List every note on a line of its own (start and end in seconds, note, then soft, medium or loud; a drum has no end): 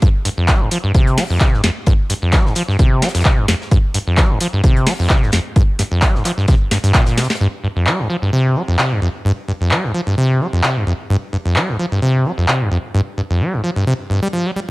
0.02 0.09 G2 loud
0.02 kick loud
0.02 closed hi-hat medium
0.25 0.29 G2 medium
0.25 closed hi-hat medium
0.25 open hi-hat loud
0.38 0.50 F2 medium
0.48 0.62 G3 loud
0.48 kick loud
0.48 snare loud
0.48 clap loud
0.48 closed hi-hat medium
0.61 0.69 G2 medium
0.71 0.78 F3 medium
0.71 closed hi-hat medium
0.71 open hi-hat loud
0.84 0.92 G2 medium
0.94 1.19 C3 loud
0.94 kick loud
0.94 closed hi-hat medium
1.07 closed hi-hat soft
1.17 1.24 G3 loud
1.17 snare medium
1.17 open hi-hat medium
1.17 open hi-hat loud
1.30 1.39 F2 medium
1.40 1.55 C3 medium
1.40 kick loud
1.40 snare loud
1.40 clap loud
1.40 closed hi-hat medium
1.53 1.62 G2 medium
1.53 snare soft
1.64 1.70 F2 medium
1.64 snare medium
1.64 closed hi-hat medium
1.64 open hi-hat loud
1.86 1.94 G2 loud
1.86 kick loud
1.86 closed hi-hat medium
2.10 2.14 G2 medium
2.10 closed hi-hat medium
2.10 open hi-hat loud
2.22 2.34 F2 medium
2.32 2.47 G3 loud
2.32 kick loud
2.32 snare loud
2.32 clap loud
2.32 closed hi-hat medium
2.45 2.54 G2 medium
2.45 snare soft
2.55 2.63 F3 medium
2.55 closed hi-hat medium
2.55 open hi-hat loud
2.68 2.77 G2 medium
2.68 snare soft
2.79 3.04 C3 loud
2.79 kick loud
2.79 closed hi-hat medium
3.02 3.09 G3 loud
3.02 snare medium
3.02 closed hi-hat medium
3.02 open hi-hat loud
3.08 snare medium
3.08 closed hi-hat medium
3.15 3.23 F2 medium
3.15 snare medium
3.15 closed hi-hat medium
3.15 open hi-hat medium
3.20 snare medium
3.20 closed hi-hat medium
3.25 3.39 C3 medium
3.25 kick loud
3.25 snare loud
3.25 clap loud
3.25 closed hi-hat medium
3.38 3.46 G2 medium
3.48 3.55 F2 medium
3.48 snare medium
3.48 closed hi-hat medium
3.48 open hi-hat loud
3.61 snare medium
3.71 3.78 G2 loud
3.71 kick loud
3.71 closed hi-hat medium
3.94 3.99 G2 medium
3.94 closed hi-hat medium
3.94 open hi-hat loud
4.07 4.19 F2 medium
4.17 4.32 G3 loud
4.17 kick loud
4.17 snare loud
4.17 clap loud
4.17 closed hi-hat medium
4.30 4.39 G2 medium
4.40 4.47 F3 medium
4.40 closed hi-hat medium
4.40 open hi-hat loud
4.53 4.62 G2 medium
4.64 4.88 C3 loud
4.64 kick loud
4.64 closed hi-hat medium
4.77 closed hi-hat soft
4.87 4.94 G3 loud
4.87 snare medium
4.87 open hi-hat loud
4.87 open hi-hat medium
4.99 5.08 F2 medium
5.10 5.24 C3 medium
5.10 kick loud
5.10 snare loud
5.10 clap loud
5.10 closed hi-hat medium
5.22 5.31 G2 medium
5.22 snare soft
5.32 5.40 F2 medium
5.32 snare medium
5.32 closed hi-hat medium
5.32 open hi-hat loud
5.56 5.63 G2 loud
5.56 kick loud
5.56 closed hi-hat medium
5.79 5.83 G2 medium
5.79 snare soft
5.79 closed hi-hat medium
5.79 open hi-hat loud
5.91 6.04 F2 medium
6.02 6.16 G3 loud
6.02 kick loud
6.02 snare loud
6.02 clap loud
6.02 closed hi-hat medium
6.15 6.23 G2 medium
6.15 snare soft
6.25 6.32 F3 medium
6.25 clap soft
6.25 closed hi-hat medium
6.25 open hi-hat loud
6.38 6.46 G2 medium
6.38 snare soft
6.48 6.55 C3 loud
6.48 kick loud
6.48 snare loud
6.48 closed hi-hat medium
6.71 6.78 G2 medium
6.71 snare medium
6.71 snare loud
6.71 closed hi-hat medium
6.71 open hi-hat loud
6.84 6.92 G2 loud
6.84 open hi-hat medium
6.94 7.05 A#2 loud
6.94 kick loud
6.94 snare loud
6.94 clap loud
6.94 closed hi-hat medium
7.06 7.19 A#2 medium
7.06 snare loud
7.06 closed hi-hat medium
7.17 7.28 C3 medium
7.17 snare medium
7.17 closed hi-hat medium
7.17 open hi-hat loud
7.23 snare medium
7.23 closed hi-hat medium
7.30 snare medium
7.30 closed hi-hat medium
7.35 snare medium
7.35 closed hi-hat medium
7.41 7.47 G2 loud
7.64 7.68 G2 medium
7.76 7.88 F2 medium
7.87 8.01 G3 medium
7.87 clap loud
7.99 8.08 G2 medium
8.10 8.17 F3 medium
8.22 8.31 G2 medium
8.33 8.57 C3 loud
8.56 8.63 G3 loud
8.68 8.77 F2 medium
8.79 8.93 C3 medium
8.79 clap loud
8.91 9.00 G2 medium
9.02 9.09 F2 medium
9.25 9.32 G2 loud
9.48 9.52 G2 medium
9.61 9.73 F2 medium
9.71 9.85 G3 medium
9.71 clap loud
9.84 9.93 G2 medium
9.94 10.01 F3 medium
10.07 10.16 G2 medium
10.18 10.42 C3 loud
10.40 10.47 G3 loud
10.53 10.62 F2 medium
10.63 10.78 C3 medium
10.63 clap loud
10.76 10.85 G2 medium
10.87 10.94 F2 medium
11.10 11.17 G2 loud
11.33 11.37 G2 medium
11.45 11.57 F2 medium
11.56 11.70 G3 medium
11.56 clap loud
11.69 11.77 G2 medium
11.79 11.86 F3 medium
11.92 12.00 G2 medium
12.02 12.27 C3 loud
12.25 12.32 G3 loud
12.38 12.46 F2 medium
12.48 12.62 C3 medium
12.48 clap loud
12.61 12.70 G2 medium
12.71 12.78 F2 medium
12.94 13.01 G2 loud
13.18 13.22 G2 medium
13.30 13.42 F2 medium
13.41 13.55 G3 medium
13.53 13.62 G2 medium
13.64 13.71 F3 medium
13.76 13.85 G2 medium
13.87 13.94 C3 loud
14.10 14.20 G2 medium
14.22 14.28 G3 loud
14.33 14.47 F3 medium
14.45 14.51 G3 loud
14.56 14.60 G3 medium